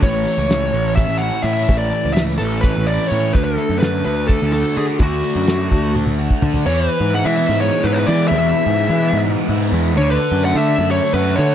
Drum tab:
HH |x-x-x-x-x-x-x-|x-x-x-x-x-x-x-|x-x-x-x-x-x-x-|x-x-x-x-------|
SD |----o---------|----o-o-------|----o-----o---|----o---------|
T1 |--------------|--------------|--------------|--------oo----|
FT |--------------|--------------|--------------|------------oo|
BD |o-------o-----|o-------o-----|o-------o-----|o-----o----o--|

HH |--------------|--------------|--------------|
SD |--------------|--------------|--------------|
T1 |--------------|--------------|--------------|
FT |--------------|--------------|--------------|
BD |--------------|--------------|--------------|